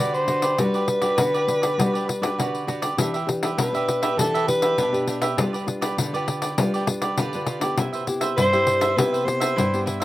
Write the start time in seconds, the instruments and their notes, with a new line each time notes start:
Already playing: nylon-string guitar D4 F#4 B4, soprano saxophone D5
0.00 nylon-string guitar D3, cavaquinho F#4 G4 B4 D5
0.14 soprano saxophone C5, pandeiro
0.28 nylon-string guitar D4 F#4 B4, cavaquinho F#4 G4 B4 D5, pandeiro
0.42 cavaquinho G4 B4 D5, pandeiro
0.58 nylon-string guitar G3 D4 F#4 B4, cavaquinho F#4 G4 B4 D5, soprano saxophone B4, pandeiro
0.74 cavaquinho G4 B4 D5, pandeiro
0.88 muted cavaquinho stroke, pandeiro
1.02 nylon-string guitar D4 F#4 B4, cavaquinho G4 B4 D5, pandeiro
1.18 nylon-string guitar D3, cavaquinho F#4 G4 B4 D5, pandeiro
1.34 cavaquinho G4 B4 D5, pandeiro
1.47 nylon-string guitar D4 F#4 B4, pandeiro
1.62 cavaquinho G4 B4 D5, pandeiro
1.78 nylon-string guitar G3 D4 F#4 B4, cavaquinho F#4 G4 B4 D5, pandeiro
1.93 cavaquinho G4 B4 D5, pandeiro
2.08 muted cavaquinho stroke, pandeiro
2.21 nylon-string guitar D4 F#4 B4, cavaquinho G4 B4 D5, pandeiro
2.38 nylon-string guitar D3, cavaquinho F#4 G4 B4 D5, pandeiro
2.55 pandeiro
2.67 nylon-string guitar D4 F#4 B4, cavaquinho F#4 G4 B4 D5, pandeiro
2.82 cavaquinho G4 B4 D5, pandeiro
2.97 nylon-string guitar E3 D4 G4 B4, cavaquinho D4 G4 B4 E5, pandeiro
3.14 cavaquinho G4 B4 E5, pandeiro
3.26 nylon-string guitar D4 G4 B4, pandeiro
3.43 cavaquinho G4 B4 E5, pandeiro
3.57 nylon-string guitar B2, cavaquinho D4 G4 B4 E5, soprano saxophone B4, pandeiro
3.72 nylon-string guitar D4 G4 B4, cavaquinho G4 B4 E5, pandeiro
3.88 pandeiro
4.02 cavaquinho G4 B4 E5, pandeiro
4.17 nylon-string guitar E3 D4 G4 B4, cavaquinho D4 G4 B4, soprano saxophone A4, pandeiro
4.21 cavaquinho E5
4.34 cavaquinho G4 B4 E5, pandeiro
4.47 nylon-string guitar D4 G4 B4, soprano saxophone B4, muted cavaquinho stroke, pandeiro
4.62 cavaquinho G4 B4 E5, pandeiro
4.77 nylon-string guitar B2, cavaquinho D4 G4 B4 E5, pandeiro
4.92 nylon-string guitar D4 G4 B4, pandeiro
5.07 cavaquinho D4 G4 B4 E5, pandeiro
5.22 cavaquinho G4 B4 E5, pandeiro
5.37 nylon-string guitar G3 D4 F4 B4, cavaquinho F4 G4 B4 D5, pandeiro
5.53 cavaquinho G4 B4 D5, pandeiro
5.66 nylon-string guitar D4 F4 B4, muted cavaquinho stroke, pandeiro
5.81 cavaquinho G4 B4 D5, pandeiro
5.97 nylon-string guitar D3, cavaquinho F4 G4 B4 D5, pandeiro
6.13 nylon-string guitar D4 F4 B4, cavaquinho G4 B4 D5, pandeiro
6.28 pandeiro
6.42 cavaquinho G4 B4 D5, pandeiro
6.58 nylon-string guitar G3 D4 F4 B4, cavaquinho F4 G4 B4 D5, pandeiro
6.74 cavaquinho G4 B4 D5, pandeiro
6.87 nylon-string guitar D4 F4 B4, muted cavaquinho stroke, pandeiro
7.01 cavaquinho G4 B4 D5, pandeiro
7.17 nylon-string guitar D3, cavaquinho F4 G4 B4 D5, pandeiro
7.33 nylon-string guitar D4 F4 B4, pandeiro
7.46 cavaquinho F4 G4 B4 D5, pandeiro
7.61 nylon-string guitar B3 E4 G4, cavaquinho G4 B4 D5, pandeiro
7.77 nylon-string guitar C3, cavaquinho E4 B4 C5 E5, pandeiro
7.93 cavaquinho B4 C5 E5, pandeiro
8.07 nylon-string guitar B3 E4 G4, muted cavaquinho stroke, pandeiro
8.21 cavaquinho B4 C5 E5, pandeiro
8.37 nylon-string guitar G2, cavaquinho E4 B4 C5 E5, soprano saxophone C5, pandeiro
8.53 nylon-string guitar E4 G4, cavaquinho B4 C5 E5, pandeiro
8.67 pandeiro
8.81 cavaquinho B4 C5 E5, pandeiro
8.96 nylon-string guitar C3 B3 E4 G4, cavaquinho E4 B4 C5 E5, soprano saxophone B4, pandeiro
9.13 cavaquinho B4 C5 E5, pandeiro
9.25 nylon-string guitar B3 E4 G4, soprano saxophone C5, muted cavaquinho stroke, pandeiro
9.40 cavaquinho B4 C5 E5, pandeiro
9.56 nylon-string guitar G2, cavaquinho E4 B4 C5 E5, pandeiro
9.73 nylon-string guitar B3 E4 G4, pandeiro
9.86 cavaquinho E4 B4 C5 E5, pandeiro
10.00 cavaquinho C5 E5